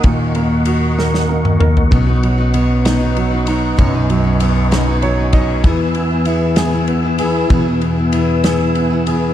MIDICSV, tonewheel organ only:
0, 0, Header, 1, 2, 480
1, 0, Start_track
1, 0, Key_signature, 5, "major"
1, 0, Tempo, 623053
1, 33, Time_signature, 6, 3, 24, 8
1, 7193, End_track
2, 0, Start_track
2, 0, Title_t, "Tonewheel organ"
2, 0, Program_c, 0, 16
2, 0, Note_on_c, 0, 70, 67
2, 0, Note_on_c, 0, 75, 62
2, 0, Note_on_c, 0, 78, 57
2, 22, Note_on_c, 0, 85, 72
2, 1445, Note_off_c, 0, 70, 0
2, 1447, Note_off_c, 0, 75, 0
2, 1447, Note_off_c, 0, 78, 0
2, 1470, Note_on_c, 0, 71, 60
2, 1471, Note_on_c, 0, 75, 58
2, 1472, Note_on_c, 0, 78, 55
2, 2898, Note_off_c, 0, 78, 0
2, 2922, Note_on_c, 0, 80, 60
2, 4311, Note_off_c, 0, 85, 0
2, 4316, Note_off_c, 0, 75, 0
2, 4350, Note_on_c, 0, 64, 60
2, 4352, Note_on_c, 0, 88, 76
2, 7193, Note_off_c, 0, 64, 0
2, 7193, Note_off_c, 0, 71, 0
2, 7193, Note_off_c, 0, 80, 0
2, 7193, Note_off_c, 0, 88, 0
2, 7193, End_track
0, 0, End_of_file